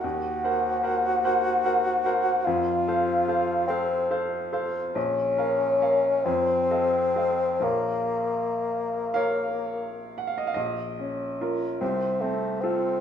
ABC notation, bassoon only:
X:1
M:6/8
L:1/8
Q:3/8=47
K:Bbm
V:1 name="Bassoon"
G6 | F3 C z2 | D3 C3 | B,4- B, z |
z3 C =A, C |]